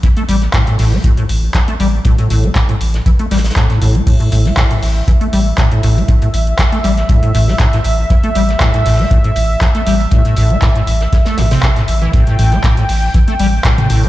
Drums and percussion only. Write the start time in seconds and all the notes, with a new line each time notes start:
0.03 kick, closed hi-hat
0.17 closed hi-hat
0.29 closed hi-hat, open hi-hat
0.42 snare, closed hi-hat
0.53 kick, snare, clap, closed hi-hat
0.67 closed hi-hat
0.79 open hi-hat
0.92 closed hi-hat
1.04 kick, closed hi-hat
1.17 closed hi-hat
1.29 closed hi-hat, open hi-hat
1.54 kick, snare, clap, closed hi-hat
1.68 closed hi-hat
1.80 open hi-hat
2.05 kick, closed hi-hat
2.18 closed hi-hat
2.30 closed hi-hat, open hi-hat
2.44 closed hi-hat
2.55 kick, snare, clap, closed hi-hat
2.69 closed hi-hat
2.81 closed hi-hat, open hi-hat
2.94 snare, closed hi-hat
3.06 kick, closed hi-hat
3.19 closed hi-hat
3.31 snare, closed hi-hat, open hi-hat
3.38 snare, closed hi-hat
3.44 snare, closed hi-hat, open hi-hat
3.51 snare, closed hi-hat
3.56 kick, snare, clap, closed hi-hat
3.70 snare, closed hi-hat
3.82 closed hi-hat, open hi-hat
3.95 closed hi-hat
4.07 kick, closed hi-hat, crash
4.20 closed hi-hat
4.32 closed hi-hat, open hi-hat
4.45 snare, closed hi-hat
4.57 kick, snare, clap, closed hi-hat
4.71 closed hi-hat
4.83 open hi-hat
4.96 closed hi-hat
5.08 kick, closed hi-hat
5.21 closed hi-hat
5.33 closed hi-hat, open hi-hat
5.58 kick, snare, clap, closed hi-hat
5.72 closed hi-hat
5.83 closed hi-hat, open hi-hat
5.98 closed hi-hat
6.08 kick, closed hi-hat
6.22 closed hi-hat
6.34 closed hi-hat, open hi-hat
6.47 closed hi-hat
6.58 kick, snare, clap, closed hi-hat
6.72 closed hi-hat
6.84 closed hi-hat, open hi-hat
6.97 snare, closed hi-hat
7.09 kick, closed hi-hat
7.23 closed hi-hat
7.35 closed hi-hat, open hi-hat
7.48 snare
7.59 kick, snare, clap, closed hi-hat
7.73 snare, closed hi-hat
7.84 closed hi-hat, open hi-hat
8.10 kick, closed hi-hat
8.24 closed hi-hat
8.35 closed hi-hat, open hi-hat
8.49 snare, closed hi-hat
8.60 kick, snare, clap, closed hi-hat
8.74 closed hi-hat
8.86 open hi-hat
8.99 closed hi-hat
9.11 kick, closed hi-hat
9.24 closed hi-hat
9.36 closed hi-hat, open hi-hat
9.61 kick, snare, clap, closed hi-hat
9.75 closed hi-hat
9.87 closed hi-hat, open hi-hat
10.00 closed hi-hat
10.11 kick, closed hi-hat
10.25 closed hi-hat
10.36 closed hi-hat, open hi-hat
10.50 closed hi-hat
10.62 kick, snare, clap, closed hi-hat
10.75 closed hi-hat
10.87 closed hi-hat, open hi-hat
11.01 snare, closed hi-hat
11.13 kick, snare, closed hi-hat
11.25 snare, closed hi-hat
11.37 snare, closed hi-hat, open hi-hat
11.51 snare, closed hi-hat, open hi-hat
11.63 kick, snare, clap, closed hi-hat
11.76 snare, closed hi-hat
11.88 closed hi-hat, open hi-hat
12.02 closed hi-hat
12.13 kick, closed hi-hat
12.27 closed hi-hat
12.39 closed hi-hat, open hi-hat
12.51 snare, closed hi-hat
12.64 kick, snare, clap, closed hi-hat
12.77 closed hi-hat
12.89 open hi-hat
13.02 closed hi-hat
13.14 kick, closed hi-hat
13.28 closed hi-hat
13.39 closed hi-hat, open hi-hat
13.64 kick, snare, clap, closed hi-hat
13.78 closed hi-hat, mid tom
13.90 closed hi-hat, open hi-hat
14.03 closed hi-hat